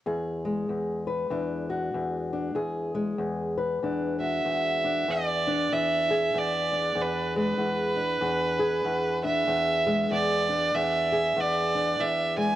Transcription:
0, 0, Header, 1, 3, 480
1, 0, Start_track
1, 0, Tempo, 627615
1, 44, Time_signature, 4, 2, 24, 8
1, 9603, End_track
2, 0, Start_track
2, 0, Title_t, "Fiddle"
2, 0, Program_c, 0, 110
2, 3215, Note_on_c, 0, 76, 79
2, 3902, Note_on_c, 0, 74, 84
2, 3913, Note_off_c, 0, 76, 0
2, 4383, Note_on_c, 0, 76, 80
2, 4394, Note_off_c, 0, 74, 0
2, 4880, Note_on_c, 0, 74, 78
2, 4892, Note_off_c, 0, 76, 0
2, 5364, Note_on_c, 0, 71, 72
2, 5376, Note_off_c, 0, 74, 0
2, 5638, Note_off_c, 0, 71, 0
2, 5642, Note_on_c, 0, 71, 84
2, 7040, Note_off_c, 0, 71, 0
2, 7071, Note_on_c, 0, 76, 97
2, 7705, Note_off_c, 0, 76, 0
2, 7747, Note_on_c, 0, 74, 95
2, 8220, Note_on_c, 0, 76, 92
2, 8232, Note_off_c, 0, 74, 0
2, 8724, Note_on_c, 0, 74, 92
2, 8735, Note_off_c, 0, 76, 0
2, 9182, Note_on_c, 0, 76, 86
2, 9194, Note_off_c, 0, 74, 0
2, 9463, Note_off_c, 0, 76, 0
2, 9472, Note_on_c, 0, 80, 109
2, 9603, Note_off_c, 0, 80, 0
2, 9603, End_track
3, 0, Start_track
3, 0, Title_t, "Steel-string acoustic guitar"
3, 0, Program_c, 1, 25
3, 44, Note_on_c, 1, 40, 57
3, 48, Note_on_c, 1, 68, 54
3, 342, Note_on_c, 1, 56, 46
3, 524, Note_off_c, 1, 40, 0
3, 527, Note_on_c, 1, 40, 57
3, 814, Note_off_c, 1, 68, 0
3, 817, Note_on_c, 1, 71, 48
3, 993, Note_off_c, 1, 40, 0
3, 996, Note_on_c, 1, 40, 63
3, 1001, Note_on_c, 1, 62, 52
3, 1295, Note_off_c, 1, 71, 0
3, 1299, Note_on_c, 1, 66, 48
3, 1483, Note_off_c, 1, 40, 0
3, 1486, Note_on_c, 1, 40, 60
3, 1778, Note_off_c, 1, 62, 0
3, 1781, Note_on_c, 1, 62, 51
3, 1946, Note_off_c, 1, 40, 0
3, 1949, Note_off_c, 1, 66, 0
3, 1949, Note_on_c, 1, 40, 60
3, 1954, Note_on_c, 1, 68, 55
3, 1972, Note_off_c, 1, 62, 0
3, 2252, Note_off_c, 1, 56, 0
3, 2255, Note_on_c, 1, 56, 51
3, 2425, Note_off_c, 1, 40, 0
3, 2435, Note_on_c, 1, 40, 58
3, 2731, Note_off_c, 1, 68, 0
3, 2734, Note_on_c, 1, 71, 52
3, 2919, Note_off_c, 1, 40, 0
3, 2927, Note_on_c, 1, 40, 67
3, 2933, Note_on_c, 1, 62, 57
3, 3212, Note_off_c, 1, 71, 0
3, 3215, Note_on_c, 1, 66, 49
3, 3393, Note_off_c, 1, 40, 0
3, 3402, Note_on_c, 1, 40, 59
3, 3694, Note_off_c, 1, 62, 0
3, 3703, Note_on_c, 1, 62, 52
3, 3868, Note_off_c, 1, 66, 0
3, 3869, Note_off_c, 1, 56, 0
3, 3872, Note_off_c, 1, 62, 0
3, 3878, Note_off_c, 1, 40, 0
3, 3887, Note_on_c, 1, 40, 62
3, 4186, Note_on_c, 1, 62, 50
3, 4374, Note_off_c, 1, 40, 0
3, 4377, Note_on_c, 1, 40, 64
3, 4668, Note_on_c, 1, 68, 58
3, 4847, Note_off_c, 1, 40, 0
3, 4850, Note_on_c, 1, 40, 71
3, 5132, Note_off_c, 1, 62, 0
3, 5135, Note_on_c, 1, 62, 53
3, 5315, Note_off_c, 1, 40, 0
3, 5318, Note_on_c, 1, 40, 68
3, 5629, Note_on_c, 1, 56, 54
3, 5792, Note_off_c, 1, 40, 0
3, 5795, Note_on_c, 1, 40, 64
3, 5818, Note_off_c, 1, 62, 0
3, 6088, Note_on_c, 1, 62, 53
3, 6111, Note_off_c, 1, 56, 0
3, 6111, Note_off_c, 1, 68, 0
3, 6275, Note_off_c, 1, 40, 0
3, 6278, Note_on_c, 1, 40, 66
3, 6572, Note_on_c, 1, 68, 61
3, 6762, Note_off_c, 1, 40, 0
3, 6765, Note_on_c, 1, 40, 71
3, 7065, Note_off_c, 1, 62, 0
3, 7068, Note_on_c, 1, 62, 55
3, 7242, Note_off_c, 1, 40, 0
3, 7245, Note_on_c, 1, 40, 67
3, 7544, Note_on_c, 1, 56, 59
3, 7727, Note_off_c, 1, 40, 0
3, 7730, Note_on_c, 1, 40, 69
3, 7753, Note_off_c, 1, 62, 0
3, 8021, Note_on_c, 1, 62, 55
3, 8044, Note_off_c, 1, 56, 0
3, 8044, Note_off_c, 1, 68, 0
3, 8215, Note_off_c, 1, 40, 0
3, 8218, Note_on_c, 1, 40, 68
3, 8507, Note_on_c, 1, 68, 62
3, 8689, Note_off_c, 1, 40, 0
3, 8692, Note_on_c, 1, 40, 77
3, 8974, Note_off_c, 1, 62, 0
3, 8984, Note_on_c, 1, 62, 56
3, 9165, Note_off_c, 1, 40, 0
3, 9174, Note_on_c, 1, 40, 68
3, 9463, Note_on_c, 1, 56, 53
3, 9603, Note_off_c, 1, 40, 0
3, 9603, Note_off_c, 1, 56, 0
3, 9603, Note_off_c, 1, 62, 0
3, 9603, Note_off_c, 1, 68, 0
3, 9603, End_track
0, 0, End_of_file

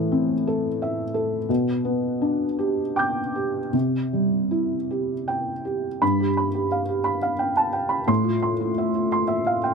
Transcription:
0, 0, Header, 1, 2, 480
1, 0, Start_track
1, 0, Tempo, 697674
1, 1024, Time_signature, 6, 3, 24, 8
1, 1520, Tempo, 761421
1, 3920, Tempo, 688863
1, 6515, End_track
2, 0, Start_track
2, 0, Title_t, "Felt piano"
2, 0, Program_c, 0, 0
2, 0, Control_c, 0, 64, 127
2, 0, Note_on_c, 0, 45, 59
2, 0, Note_on_c, 0, 52, 46
2, 0, Note_on_c, 0, 69, 51
2, 79, Note_on_c, 0, 60, 49
2, 227, Note_off_c, 0, 52, 0
2, 326, Note_off_c, 0, 69, 0
2, 326, Note_on_c, 0, 69, 53
2, 460, Note_off_c, 0, 60, 0
2, 564, Note_on_c, 0, 76, 50
2, 699, Note_off_c, 0, 69, 0
2, 786, Note_on_c, 0, 69, 49
2, 934, Note_off_c, 0, 76, 0
2, 1001, Note_off_c, 0, 45, 0
2, 1023, Note_off_c, 0, 69, 0
2, 1025, Note_on_c, 0, 47, 57
2, 1038, Control_c, 0, 64, 0
2, 1142, Control_c, 0, 64, 127
2, 1271, Note_on_c, 0, 59, 46
2, 1523, Note_on_c, 0, 62, 40
2, 1662, Note_off_c, 0, 59, 0
2, 1757, Note_on_c, 0, 67, 44
2, 1898, Note_off_c, 0, 62, 0
2, 1994, Note_on_c, 0, 79, 56
2, 1995, Note_on_c, 0, 86, 33
2, 2013, Note_on_c, 0, 91, 32
2, 2138, Note_off_c, 0, 67, 0
2, 2240, Note_on_c, 0, 67, 39
2, 2383, Note_off_c, 0, 79, 0
2, 2457, Note_off_c, 0, 47, 0
2, 2458, Note_off_c, 0, 86, 0
2, 2467, Note_off_c, 0, 91, 0
2, 2478, Note_on_c, 0, 48, 46
2, 2485, Note_off_c, 0, 67, 0
2, 2495, Control_c, 0, 64, 0
2, 2612, Control_c, 0, 64, 127
2, 2732, Note_on_c, 0, 55, 38
2, 2970, Note_on_c, 0, 64, 35
2, 3120, Note_off_c, 0, 55, 0
2, 3219, Note_on_c, 0, 67, 40
2, 3356, Note_off_c, 0, 64, 0
2, 3454, Note_on_c, 0, 79, 51
2, 3598, Note_off_c, 0, 67, 0
2, 3688, Note_on_c, 0, 67, 34
2, 3830, Note_off_c, 0, 79, 0
2, 3893, Note_off_c, 0, 48, 0
2, 3918, Note_off_c, 0, 67, 0
2, 3920, Note_on_c, 0, 83, 61
2, 3921, Note_on_c, 0, 43, 50
2, 3932, Control_c, 0, 64, 0
2, 4047, Note_on_c, 0, 67, 37
2, 4056, Control_c, 0, 64, 127
2, 4117, Note_off_c, 0, 83, 0
2, 4168, Note_on_c, 0, 83, 47
2, 4242, Note_off_c, 0, 67, 0
2, 4284, Note_on_c, 0, 67, 41
2, 4363, Note_off_c, 0, 83, 0
2, 4408, Note_on_c, 0, 77, 42
2, 4480, Note_off_c, 0, 67, 0
2, 4526, Note_on_c, 0, 67, 42
2, 4601, Note_off_c, 0, 77, 0
2, 4635, Note_on_c, 0, 83, 49
2, 4720, Note_off_c, 0, 67, 0
2, 4761, Note_on_c, 0, 77, 45
2, 4834, Note_off_c, 0, 83, 0
2, 4878, Note_on_c, 0, 79, 47
2, 4957, Note_off_c, 0, 77, 0
2, 5002, Note_on_c, 0, 81, 41
2, 5073, Note_off_c, 0, 79, 0
2, 5113, Note_on_c, 0, 79, 48
2, 5123, Note_off_c, 0, 81, 0
2, 5225, Note_on_c, 0, 83, 46
2, 5309, Note_off_c, 0, 79, 0
2, 5336, Note_off_c, 0, 43, 0
2, 5353, Note_off_c, 0, 83, 0
2, 5356, Note_on_c, 0, 45, 57
2, 5356, Note_on_c, 0, 84, 65
2, 5375, Control_c, 0, 64, 0
2, 5469, Note_on_c, 0, 65, 42
2, 5489, Control_c, 0, 64, 127
2, 5551, Note_off_c, 0, 84, 0
2, 5598, Note_on_c, 0, 84, 47
2, 5669, Note_off_c, 0, 65, 0
2, 5723, Note_on_c, 0, 65, 44
2, 5795, Note_off_c, 0, 84, 0
2, 5845, Note_on_c, 0, 76, 44
2, 5919, Note_off_c, 0, 65, 0
2, 5963, Note_on_c, 0, 65, 45
2, 6040, Note_off_c, 0, 76, 0
2, 6084, Note_on_c, 0, 84, 54
2, 6158, Note_off_c, 0, 65, 0
2, 6191, Note_on_c, 0, 76, 54
2, 6276, Note_off_c, 0, 84, 0
2, 6324, Note_on_c, 0, 77, 51
2, 6387, Note_off_c, 0, 76, 0
2, 6443, Note_on_c, 0, 79, 48
2, 6511, Note_off_c, 0, 77, 0
2, 6515, Note_off_c, 0, 45, 0
2, 6515, Note_off_c, 0, 79, 0
2, 6515, End_track
0, 0, End_of_file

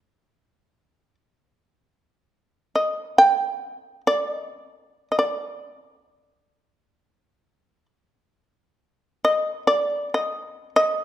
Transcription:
0, 0, Header, 1, 2, 480
1, 0, Start_track
1, 0, Tempo, 500000
1, 10602, End_track
2, 0, Start_track
2, 0, Title_t, "Shamisen"
2, 0, Program_c, 0, 106
2, 0, Note_on_c, 0, 74, 41
2, 1100, Note_off_c, 0, 74, 0
2, 2645, Note_on_c, 0, 75, 44
2, 3040, Note_off_c, 0, 75, 0
2, 3056, Note_on_c, 0, 79, 62
2, 3594, Note_off_c, 0, 79, 0
2, 3594, Note_on_c, 0, 75, 62
2, 3846, Note_off_c, 0, 75, 0
2, 3910, Note_on_c, 0, 74, 58
2, 4140, Note_off_c, 0, 74, 0
2, 4140, Note_on_c, 0, 75, 58
2, 4874, Note_off_c, 0, 75, 0
2, 4912, Note_on_c, 0, 75, 35
2, 4975, Note_off_c, 0, 75, 0
2, 4979, Note_on_c, 0, 74, 51
2, 7542, Note_off_c, 0, 74, 0
2, 8876, Note_on_c, 0, 75, 62
2, 9239, Note_off_c, 0, 75, 0
2, 9286, Note_on_c, 0, 74, 59
2, 9683, Note_off_c, 0, 74, 0
2, 9737, Note_on_c, 0, 75, 58
2, 10263, Note_off_c, 0, 75, 0
2, 10332, Note_on_c, 0, 75, 60
2, 10602, Note_off_c, 0, 75, 0
2, 10602, End_track
0, 0, End_of_file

